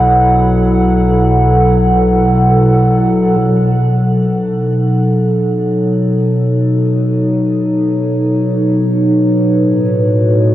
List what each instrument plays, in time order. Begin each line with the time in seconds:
Already playing: synth drone B1 B3 B4, ambient pad B2 F#3 E4 A4 F#5
3.38 synth drone B3 B4
4.02 ambient pad D#4
5.29 ambient pad C#5
9.55 ambient pad A2
9.74 ambient pad F#4
10.03 ambient pad A3